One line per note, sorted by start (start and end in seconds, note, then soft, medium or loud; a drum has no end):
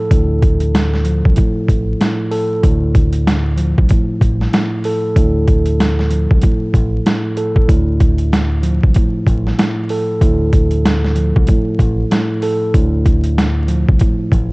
0.00 0.11 A2 medium
0.00 1.04 F3 medium
0.00 2.30 A4 medium
0.11 1.21 D2 loud
0.11 1.35 A2 loud
0.11 kick loud
0.11 closed hi-hat loud
0.42 kick loud
0.42 closed hi-hat medium
0.60 closed hi-hat medium
0.75 snare loud
0.75 closed hi-hat loud
0.94 snare soft
1.05 2.63 F3 medium
1.05 closed hi-hat medium
1.25 1.35 C2 medium
1.25 kick loud
1.36 1.99 A2 medium
1.36 kick loud
1.36 closed hi-hat medium
1.68 1.93 A1 medium
1.68 kick medium
1.68 closed hi-hat medium
2.00 2.61 A2 medium
2.00 snare loud
2.00 closed hi-hat medium
2.31 2.63 A4 medium
2.31 open hi-hat soft
2.63 3.73 D2 loud
2.63 3.89 A2 loud
2.63 kick loud
2.63 closed hi-hat loud
2.95 kick medium
2.95 closed hi-hat medium
3.13 closed hi-hat medium
3.27 snare loud
3.27 closed hi-hat loud
3.57 6.09 F3 medium
3.57 closed hi-hat medium
3.78 3.88 C2 medium
3.78 kick loud
3.89 4.51 A2 medium
3.89 kick loud
3.89 closed hi-hat medium
4.21 4.46 A1 medium
4.21 kick medium
4.21 closed hi-hat medium
4.41 snare soft
4.52 5.16 A2 medium
4.52 snare loud
4.52 closed hi-hat medium
4.84 7.36 A4 medium
4.84 open hi-hat soft
5.16 6.26 D2 loud
5.16 6.41 A2 medium
5.16 kick loud
5.16 closed hi-hat loud
5.48 kick medium
5.48 closed hi-hat medium
5.66 closed hi-hat medium
5.80 snare loud
5.80 closed hi-hat medium
5.99 snare soft
6.11 7.69 F3 medium
6.11 closed hi-hat medium
6.31 6.40 C2 medium
6.31 kick loud
6.42 7.05 A2 medium
6.42 kick loud
6.42 closed hi-hat medium
6.74 6.99 A1 medium
6.74 kick loud
6.74 closed hi-hat medium
7.06 7.67 A2 medium
7.06 snare loud
7.06 closed hi-hat medium
7.37 7.69 A4 medium
7.37 closed hi-hat medium
7.56 kick medium
7.68 8.79 D2 loud
7.68 8.95 A2 medium
7.68 kick loud
7.68 closed hi-hat loud
8.00 kick loud
8.00 closed hi-hat medium
8.18 closed hi-hat medium
8.33 snare loud
8.33 closed hi-hat loud
8.63 11.15 F3 medium
8.63 closed hi-hat medium
8.83 8.93 C2 medium
8.83 kick loud
8.94 9.57 A2 medium
8.94 kick loud
8.94 closed hi-hat medium
9.26 9.51 A1 loud
9.26 kick medium
9.26 closed hi-hat medium
9.47 snare soft
9.58 10.21 A2 medium
9.58 snare loud
9.58 closed hi-hat medium
9.89 12.41 A4 medium
9.89 open hi-hat soft
10.21 11.31 D2 loud
10.21 11.46 A2 loud
10.21 kick loud
10.21 closed hi-hat loud
10.53 kick medium
10.53 closed hi-hat medium
10.71 closed hi-hat medium
10.85 snare loud
10.85 closed hi-hat loud
11.04 snare soft
11.16 12.74 F3 medium
11.16 closed hi-hat medium
11.36 11.46 C2 medium
11.36 kick loud
11.47 12.10 A2 medium
11.47 kick medium
11.47 closed hi-hat medium
11.79 12.04 A1 medium
11.79 kick medium
11.79 closed hi-hat medium
12.11 12.72 A2 medium
12.11 snare loud
12.11 closed hi-hat medium
12.42 12.74 A4 medium
12.42 open hi-hat soft
12.74 13.84 D2 loud
12.74 14.00 A2 loud
12.74 kick loud
12.74 closed hi-hat loud
13.06 kick medium
13.06 closed hi-hat medium
13.24 closed hi-hat medium
13.38 snare loud
13.38 closed hi-hat loud
13.68 14.53 F3 medium
13.68 closed hi-hat medium
13.89 13.98 C2 medium
13.89 kick loud
13.99 14.53 A2 medium
13.99 kick loud
13.99 closed hi-hat medium
14.32 14.53 A1 loud
14.32 kick medium
14.32 closed hi-hat medium